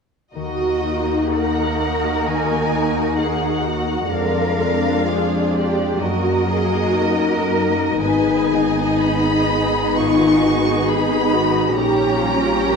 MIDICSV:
0, 0, Header, 1, 7, 480
1, 0, Start_track
1, 0, Key_signature, -6, "minor"
1, 0, Tempo, 996678
1, 171, Time_signature, 4, 2, 24, 8
1, 649, Tempo, 923077
1, 2089, Tempo, 955414
1, 3529, Tempo, 1034483
1, 4009, Tempo, 975610
1, 4969, Tempo, 896861
1, 6463, End_track
2, 0, Start_track
2, 0, Title_t, "Violin section"
2, 0, Program_c, 0, 48
2, 165, Note_on_c, 0, 75, 56
2, 627, Note_off_c, 0, 75, 0
2, 646, Note_on_c, 0, 78, 55
2, 1125, Note_on_c, 0, 80, 59
2, 1130, Note_off_c, 0, 78, 0
2, 1598, Note_on_c, 0, 78, 52
2, 1604, Note_off_c, 0, 80, 0
2, 2075, Note_off_c, 0, 78, 0
2, 2082, Note_on_c, 0, 77, 60
2, 2801, Note_on_c, 0, 74, 52
2, 2804, Note_off_c, 0, 77, 0
2, 3038, Note_on_c, 0, 75, 63
2, 3045, Note_off_c, 0, 74, 0
2, 4004, Note_on_c, 0, 80, 59
2, 4006, Note_off_c, 0, 75, 0
2, 4486, Note_off_c, 0, 80, 0
2, 4489, Note_on_c, 0, 83, 68
2, 4965, Note_off_c, 0, 83, 0
2, 4966, Note_on_c, 0, 85, 68
2, 5454, Note_off_c, 0, 85, 0
2, 5455, Note_on_c, 0, 83, 71
2, 5931, Note_off_c, 0, 83, 0
2, 5931, Note_on_c, 0, 82, 70
2, 6463, Note_off_c, 0, 82, 0
2, 6463, End_track
3, 0, Start_track
3, 0, Title_t, "Violin section"
3, 0, Program_c, 1, 48
3, 176, Note_on_c, 1, 70, 41
3, 177, Note_on_c, 1, 66, 40
3, 2071, Note_off_c, 1, 70, 0
3, 2072, Note_off_c, 1, 66, 0
3, 2091, Note_on_c, 1, 74, 44
3, 2094, Note_on_c, 1, 65, 45
3, 3030, Note_off_c, 1, 74, 0
3, 3031, Note_off_c, 1, 65, 0
3, 3044, Note_on_c, 1, 75, 45
3, 3046, Note_on_c, 1, 70, 41
3, 4001, Note_on_c, 1, 68, 46
3, 4009, Note_off_c, 1, 70, 0
3, 5927, Note_off_c, 1, 68, 0
3, 5930, Note_off_c, 1, 75, 0
3, 5932, Note_on_c, 1, 67, 55
3, 5932, Note_on_c, 1, 73, 55
3, 6463, Note_off_c, 1, 67, 0
3, 6463, Note_off_c, 1, 73, 0
3, 6463, End_track
4, 0, Start_track
4, 0, Title_t, "Cello section"
4, 0, Program_c, 2, 48
4, 168, Note_on_c, 2, 66, 42
4, 629, Note_off_c, 2, 66, 0
4, 645, Note_on_c, 2, 70, 46
4, 1604, Note_on_c, 2, 68, 43
4, 1605, Note_off_c, 2, 70, 0
4, 1841, Note_on_c, 2, 66, 39
4, 1846, Note_off_c, 2, 68, 0
4, 2084, Note_on_c, 2, 70, 50
4, 2086, Note_off_c, 2, 66, 0
4, 2553, Note_off_c, 2, 70, 0
4, 2564, Note_on_c, 2, 68, 41
4, 2805, Note_on_c, 2, 67, 44
4, 2807, Note_off_c, 2, 68, 0
4, 3046, Note_on_c, 2, 66, 44
4, 3047, Note_off_c, 2, 67, 0
4, 3285, Note_on_c, 2, 68, 44
4, 3287, Note_off_c, 2, 66, 0
4, 3524, Note_off_c, 2, 68, 0
4, 3530, Note_on_c, 2, 70, 50
4, 4009, Note_on_c, 2, 71, 51
4, 4010, Note_off_c, 2, 70, 0
4, 4251, Note_off_c, 2, 71, 0
4, 4256, Note_on_c, 2, 63, 50
4, 4970, Note_off_c, 2, 63, 0
4, 4971, Note_on_c, 2, 65, 50
4, 5213, Note_on_c, 2, 66, 47
4, 5216, Note_off_c, 2, 65, 0
4, 5455, Note_off_c, 2, 66, 0
4, 5456, Note_on_c, 2, 68, 48
4, 5691, Note_on_c, 2, 66, 48
4, 5694, Note_off_c, 2, 68, 0
4, 5931, Note_off_c, 2, 66, 0
4, 5933, Note_on_c, 2, 67, 55
4, 6167, Note_off_c, 2, 67, 0
4, 6173, Note_on_c, 2, 65, 49
4, 6409, Note_on_c, 2, 67, 52
4, 6411, Note_off_c, 2, 65, 0
4, 6463, Note_off_c, 2, 67, 0
4, 6463, End_track
5, 0, Start_track
5, 0, Title_t, "Harp"
5, 0, Program_c, 3, 46
5, 170, Note_on_c, 3, 51, 38
5, 292, Note_on_c, 3, 58, 28
5, 412, Note_on_c, 3, 63, 31
5, 530, Note_on_c, 3, 66, 30
5, 645, Note_on_c, 3, 70, 36
5, 767, Note_on_c, 3, 75, 37
5, 880, Note_off_c, 3, 70, 0
5, 886, Note_on_c, 3, 70, 34
5, 1000, Note_off_c, 3, 66, 0
5, 1006, Note_on_c, 3, 66, 33
5, 1121, Note_off_c, 3, 51, 0
5, 1128, Note_on_c, 3, 51, 36
5, 1243, Note_off_c, 3, 58, 0
5, 1250, Note_on_c, 3, 58, 31
5, 1364, Note_off_c, 3, 63, 0
5, 1370, Note_on_c, 3, 63, 32
5, 1479, Note_off_c, 3, 66, 0
5, 1485, Note_on_c, 3, 66, 31
5, 1598, Note_off_c, 3, 70, 0
5, 1604, Note_on_c, 3, 70, 35
5, 1718, Note_off_c, 3, 75, 0
5, 1725, Note_on_c, 3, 75, 36
5, 1840, Note_off_c, 3, 70, 0
5, 1846, Note_on_c, 3, 70, 35
5, 1960, Note_off_c, 3, 66, 0
5, 1967, Note_on_c, 3, 66, 31
5, 2085, Note_on_c, 3, 41, 41
5, 2106, Note_off_c, 3, 51, 0
5, 2107, Note_off_c, 3, 58, 0
5, 2107, Note_off_c, 3, 66, 0
5, 2107, Note_off_c, 3, 70, 0
5, 2107, Note_off_c, 3, 75, 0
5, 2109, Note_off_c, 3, 63, 0
5, 2203, Note_on_c, 3, 53, 29
5, 2320, Note_on_c, 3, 56, 31
5, 2442, Note_on_c, 3, 62, 32
5, 2559, Note_on_c, 3, 65, 37
5, 2683, Note_on_c, 3, 68, 36
5, 2798, Note_off_c, 3, 65, 0
5, 2804, Note_on_c, 3, 65, 37
5, 2918, Note_off_c, 3, 62, 0
5, 2924, Note_on_c, 3, 62, 35
5, 3043, Note_on_c, 3, 42, 44
5, 3065, Note_off_c, 3, 56, 0
5, 3065, Note_off_c, 3, 62, 0
5, 3066, Note_off_c, 3, 41, 0
5, 3066, Note_off_c, 3, 53, 0
5, 3066, Note_off_c, 3, 65, 0
5, 3066, Note_off_c, 3, 68, 0
5, 3163, Note_on_c, 3, 54, 31
5, 3284, Note_on_c, 3, 58, 35
5, 3405, Note_on_c, 3, 63, 37
5, 3526, Note_on_c, 3, 70, 37
5, 3635, Note_off_c, 3, 63, 0
5, 3640, Note_on_c, 3, 63, 38
5, 3757, Note_off_c, 3, 70, 0
5, 3763, Note_on_c, 3, 70, 36
5, 3879, Note_off_c, 3, 63, 0
5, 3885, Note_on_c, 3, 63, 34
5, 4005, Note_on_c, 3, 44, 46
5, 4028, Note_off_c, 3, 42, 0
5, 4028, Note_off_c, 3, 54, 0
5, 4028, Note_off_c, 3, 70, 0
5, 4029, Note_off_c, 3, 58, 0
5, 4130, Note_on_c, 3, 51, 33
5, 4253, Note_on_c, 3, 56, 37
5, 4370, Note_off_c, 3, 63, 0
5, 4376, Note_on_c, 3, 63, 35
5, 4498, Note_on_c, 3, 71, 39
5, 4618, Note_on_c, 3, 68, 38
5, 4730, Note_off_c, 3, 71, 0
5, 4736, Note_on_c, 3, 71, 38
5, 4848, Note_off_c, 3, 63, 0
5, 4854, Note_on_c, 3, 63, 37
5, 4964, Note_off_c, 3, 44, 0
5, 4970, Note_on_c, 3, 44, 41
5, 5089, Note_off_c, 3, 51, 0
5, 5096, Note_on_c, 3, 51, 33
5, 5209, Note_off_c, 3, 56, 0
5, 5215, Note_on_c, 3, 56, 38
5, 5330, Note_off_c, 3, 63, 0
5, 5336, Note_on_c, 3, 63, 35
5, 5448, Note_off_c, 3, 71, 0
5, 5455, Note_on_c, 3, 71, 42
5, 5570, Note_off_c, 3, 68, 0
5, 5577, Note_on_c, 3, 68, 41
5, 5687, Note_off_c, 3, 71, 0
5, 5694, Note_on_c, 3, 71, 39
5, 5807, Note_off_c, 3, 63, 0
5, 5813, Note_on_c, 3, 63, 37
5, 5934, Note_on_c, 3, 46, 46
5, 5951, Note_off_c, 3, 44, 0
5, 5951, Note_off_c, 3, 56, 0
5, 5951, Note_off_c, 3, 63, 0
5, 5951, Note_off_c, 3, 71, 0
5, 5952, Note_off_c, 3, 51, 0
5, 5952, Note_off_c, 3, 68, 0
5, 6055, Note_on_c, 3, 58, 36
5, 6175, Note_on_c, 3, 55, 36
5, 6295, Note_on_c, 3, 61, 41
5, 6415, Note_on_c, 3, 70, 42
5, 6463, Note_off_c, 3, 46, 0
5, 6463, Note_off_c, 3, 55, 0
5, 6463, Note_off_c, 3, 58, 0
5, 6463, Note_off_c, 3, 61, 0
5, 6463, Note_off_c, 3, 70, 0
5, 6463, End_track
6, 0, Start_track
6, 0, Title_t, "Viola section"
6, 0, Program_c, 4, 48
6, 169, Note_on_c, 4, 63, 37
6, 170, Note_on_c, 4, 58, 38
6, 2067, Note_off_c, 4, 63, 0
6, 2068, Note_off_c, 4, 58, 0
6, 2085, Note_on_c, 4, 62, 41
6, 2088, Note_on_c, 4, 56, 40
6, 3027, Note_off_c, 4, 62, 0
6, 3028, Note_off_c, 4, 56, 0
6, 3044, Note_on_c, 4, 66, 41
6, 3045, Note_on_c, 4, 58, 42
6, 3990, Note_off_c, 4, 58, 0
6, 4008, Note_off_c, 4, 66, 0
6, 4008, Note_on_c, 4, 59, 44
6, 4009, Note_on_c, 4, 63, 43
6, 5909, Note_off_c, 4, 59, 0
6, 5910, Note_off_c, 4, 63, 0
6, 5932, Note_on_c, 4, 61, 48
6, 5933, Note_on_c, 4, 67, 47
6, 6463, Note_off_c, 4, 61, 0
6, 6463, Note_off_c, 4, 67, 0
6, 6463, End_track
7, 0, Start_track
7, 0, Title_t, "Double bass section"
7, 0, Program_c, 5, 48
7, 167, Note_on_c, 5, 39, 41
7, 2066, Note_off_c, 5, 39, 0
7, 2086, Note_on_c, 5, 41, 42
7, 3027, Note_off_c, 5, 41, 0
7, 3046, Note_on_c, 5, 42, 46
7, 4006, Note_on_c, 5, 32, 46
7, 4009, Note_off_c, 5, 42, 0
7, 5908, Note_off_c, 5, 32, 0
7, 5928, Note_on_c, 5, 34, 52
7, 6463, Note_off_c, 5, 34, 0
7, 6463, End_track
0, 0, End_of_file